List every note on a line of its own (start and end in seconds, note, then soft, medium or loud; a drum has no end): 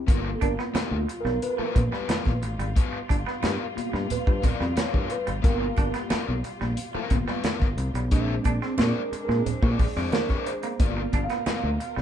0.07 0.34 G1 loud
0.07 8.08 B2 medium
0.07 8.08 G3 medium
0.07 1.05 A#3 medium
0.07 0.28 B3 medium
0.07 1.05 B3 soft
0.07 0.29 F4 medium
0.07 8.08 F4 medium
0.07 0.97 F4 medium
0.07 0.29 A#4 medium
0.07 kick loud
0.07 closed hi-hat loud
0.25 muted clean electric guitar stroke soft
0.35 0.42 A4 medium
0.41 0.55 G1 medium
0.41 0.51 D4 medium
0.41 0.57 A#4 medium
0.41 kick medium
0.41 closed hi-hat medium
0.41 muted conga medium
0.59 0.68 B3 medium
0.59 snare soft
0.74 0.95 B3 medium
0.74 0.84 B3 medium
0.74 0.96 F4 medium
0.74 0.98 G4 medium
0.74 0.96 A#4 medium
0.74 muted fingered electric bass stroke soft
0.74 snare loud
0.74 closed hi-hat medium
0.74 high conga medium
0.91 1.05 D2 medium
0.98 1.21 F4 medium
1.08 muted clean electric guitar stroke soft
1.08 closed hi-hat medium
1.20 1.41 A#4 medium
1.25 1.38 B1 medium
1.25 1.35 G3 medium
1.25 snare soft
1.42 1.73 B3 soft
1.42 1.73 F4 soft
1.42 1.72 A#4 soft
1.42 2.39 B4 medium
1.42 closed hi-hat medium
1.42 muted conga soft
1.58 1.68 F3 medium
1.58 1.80 B3 medium
1.58 1.80 F4 medium
1.58 1.79 A#4 medium
1.58 muted fingered electric bass stroke soft
1.75 1.89 A#1 loud
1.75 muted clean electric guitar stroke soft
1.75 kick medium
1.75 closed hi-hat medium
1.75 muted conga soft
1.75 low conga medium
1.92 2.02 G3 medium
1.92 2.07 B3 medium
1.92 2.09 F4 medium
1.92 2.08 B4 medium
1.92 snare soft
2.09 2.30 B3 medium
2.09 2.19 B3 medium
2.09 2.30 F4 medium
2.09 2.30 A#4 medium
2.09 snare loud
2.09 closed hi-hat medium
2.09 high conga medium
2.25 2.42 A#1 medium
2.25 kick medium
2.25 snare soft
2.25 high conga medium
2.42 2.55 A1 medium
2.42 muted clean electric guitar stroke soft
2.42 closed hi-hat medium
2.59 2.72 G#1 medium
2.59 2.69 G3 medium
2.59 closed hi-hat medium
2.76 2.97 B3 medium
2.76 2.97 F4 medium
2.76 2.97 B4 medium
2.76 kick loud
2.76 closed hi-hat medium
2.93 muted clean electric guitar stroke soft
3.09 3.23 G1 medium
3.09 3.19 D4 medium
3.09 kick medium
3.09 closed hi-hat medium
3.09 muted conga medium
3.27 3.36 B3 medium
3.27 snare soft
3.43 3.56 G2 loud
3.43 3.64 B3 medium
3.43 3.52 B3 medium
3.43 3.64 F4 medium
3.43 3.88 G4 medium
3.43 3.64 A#4 medium
3.43 snare loud
3.43 closed hi-hat medium
3.43 high conga medium
3.76 4.21 A#3 medium
3.76 4.21 B3 medium
3.76 4.21 F4 medium
3.76 muted fingered electric bass stroke soft
3.76 muted clean electric guitar stroke soft
3.76 closed hi-hat medium
3.89 4.12 G4 medium
3.93 4.07 G2 loud
3.93 4.03 G3 medium
3.93 snare soft
4.10 4.42 B4 medium
4.10 muted fingered electric bass stroke soft
4.10 closed hi-hat medium
4.10 muted conga soft
4.10 low conga medium
4.27 4.40 G2 loud
4.27 4.37 F3 medium
4.27 kick medium
4.43 4.64 B3 medium
4.43 4.64 F4 medium
4.43 4.64 A#4 loud
4.43 4.79 D5 loud
4.43 muted clean electric guitar stroke soft
4.43 kick loud
4.43 closed hi-hat medium
4.43 muted conga medium
4.43 low conga medium
4.61 4.73 F2 medium
4.61 4.70 G3 medium
4.61 snare soft
4.76 4.93 B3 medium
4.76 4.87 B3 medium
4.76 4.92 F4 medium
4.76 4.92 A#4 medium
4.76 5.12 C#5 loud
4.76 muted fingered electric bass stroke soft
4.76 snare loud
4.76 closed hi-hat medium
4.76 high conga medium
4.93 5.07 G2 medium
4.93 5.15 B3 medium
4.93 5.14 F4 medium
4.93 5.14 A#4 medium
4.93 kick medium
4.93 high conga medium
5.10 5.26 B4 medium
5.10 muted clean electric guitar stroke soft
5.10 closed hi-hat medium
5.27 5.41 G1 medium
5.27 5.36 G3 medium
5.27 closed hi-hat medium
5.42 5.70 G1 loud
5.42 6.40 A#3 medium
5.42 5.64 B3 medium
5.42 6.40 B3 soft
5.42 5.64 F4 medium
5.42 6.41 F4 medium
5.42 5.65 A#4 medium
5.42 5.90 A#4 medium
5.42 kick loud
5.42 closed hi-hat medium
5.60 muted clean electric guitar stroke soft
5.77 5.91 G1 loud
5.77 5.87 D4 medium
5.77 kick medium
5.77 closed hi-hat medium
5.77 muted conga soft
5.89 6.85 G4 medium
5.94 6.03 B3 medium
5.94 snare soft
5.94 closed hi-hat soft
6.10 6.31 B3 medium
6.10 6.20 B3 medium
6.10 6.32 F4 medium
6.10 6.32 A#4 medium
6.10 muted fingered electric bass stroke soft
6.10 snare loud
6.10 closed hi-hat medium
6.10 high conga loud
6.28 6.41 B1 medium
6.44 muted clean electric guitar stroke soft
6.44 closed hi-hat medium
6.61 6.74 A#1 medium
6.61 6.70 G3 medium
6.61 snare soft
6.77 closed hi-hat medium
6.77 muted conga soft
6.95 7.04 F3 medium
6.95 7.16 B3 medium
6.95 7.15 F4 medium
6.95 7.15 A#4 medium
6.95 muted fingered electric bass stroke medium
7.10 7.24 G1 medium
7.10 7.41 A#3 medium
7.10 7.42 B3 soft
7.10 7.42 F4 medium
7.10 muted clean electric guitar stroke soft
7.10 kick medium
7.10 closed hi-hat medium
7.10 muted conga medium
7.10 low conga medium
7.27 7.37 G3 medium
7.27 7.43 B3 medium
7.27 7.44 F4 medium
7.27 7.44 B4 medium
7.27 snare soft
7.44 7.65 B3 medium
7.44 7.54 B3 medium
7.44 7.65 F4 medium
7.44 7.66 A#4 medium
7.44 snare loud
7.44 closed hi-hat medium
7.44 high conga medium
7.60 7.75 G1 medium
7.60 kick medium
7.60 snare soft
7.60 high conga medium
7.77 7.91 C2 medium
7.77 muted clean electric guitar stroke soft
7.77 closed hi-hat medium
7.94 8.12 B1 medium
7.94 8.05 G3 medium
7.94 closed hi-hat medium
8.11 8.38 A#1 loud
8.11 8.56 G#3 medium
8.11 10.77 G#3 medium
8.11 10.77 C4 medium
8.11 8.56 C4 soft
8.11 10.77 D4 medium
8.11 8.57 D4 medium
8.11 8.32 G#4 medium
8.11 8.33 C5 medium
8.11 8.33 E5 medium
8.11 kick loud
8.11 closed hi-hat medium
8.29 muted clean electric guitar stroke soft
8.44 8.58 A#1 loud
8.44 8.55 D4 medium
8.44 kick medium
8.44 closed hi-hat medium
8.44 muted conga medium
8.62 8.72 C4 medium
8.62 snare soft
8.78 8.92 A#2 loud
8.78 8.88 C4 medium
8.78 9.00 G#4 medium
8.78 9.23 A#4 medium
8.78 9.00 C5 medium
8.78 9.00 D5 medium
8.78 snare loud
8.78 closed hi-hat medium
8.78 high conga loud
9.12 muted fingered electric bass stroke soft
9.12 muted clean electric guitar stroke soft
9.12 closed hi-hat medium
9.24 9.47 A#4 medium
9.29 9.42 A#2 medium
9.29 9.38 G#3 medium
9.29 snare soft
9.46 9.80 C5 medium
9.46 muted fingered electric bass stroke soft
9.46 closed hi-hat medium
9.46 low conga medium
9.62 9.75 A#2 loud
9.62 9.72 F3 medium
9.62 9.84 G#4 medium
9.62 9.84 C5 medium
9.62 9.83 D5 medium
9.62 kick loud
9.79 10.14 D5 medium
9.79 muted clean electric guitar stroke soft
9.79 kick loud
9.79 open hi-hat medium
9.79 muted conga medium
9.79 low conga medium
9.96 10.09 F2 medium
9.96 10.06 G#3 medium
9.96 10.12 G#4 medium
9.96 10.13 C5 medium
9.96 10.12 D5 medium
9.96 snare soft
10.12 10.23 A#3 medium
10.12 10.29 G#4 medium
10.12 10.44 A#4 medium
10.12 10.30 C5 medium
10.12 10.29 D5 medium
10.12 snare loud
10.12 closed hi-hat medium
10.12 high conga medium
10.29 10.51 G#4 medium
10.29 10.51 C5 medium
10.29 10.50 D5 medium
10.29 kick medium
10.29 snare soft
10.29 high conga medium
10.46 10.81 C5 medium
10.46 muted clean electric guitar stroke soft
10.46 closed hi-hat medium
10.63 10.73 A#3 medium
10.63 closed hi-hat medium
10.79 11.06 G1 loud
10.79 12.02 B2 medium
10.79 11.76 A#3 medium
10.79 11.76 B3 soft
10.79 11.00 B3 medium
10.79 12.02 F4 medium
10.79 11.76 F4 medium
10.79 11.01 F4 medium
10.79 12.02 A#4 medium
10.79 11.01 A#4 medium
10.79 11.26 D5 medium
10.79 kick loud
10.79 closed hi-hat medium
10.97 muted clean electric guitar stroke soft
11.13 11.26 G1 loud
11.13 11.23 D4 medium
11.13 kick medium
11.13 closed hi-hat medium
11.13 muted conga medium
11.24 12.02 F5 medium
11.30 11.40 B3 medium
11.30 snare soft
11.30 closed hi-hat soft
11.46 11.56 B3 medium
11.46 11.67 B3 medium
11.46 11.68 F4 medium
11.46 11.68 A#4 medium
11.46 muted fingered electric bass stroke medium
11.46 snare loud
11.46 closed hi-hat medium
11.46 high conga medium
11.63 11.76 D2 loud
11.80 muted clean electric guitar stroke soft
11.80 closed hi-hat medium
11.96 12.02 B1 loud
11.96 12.02 G3 medium
11.96 snare soft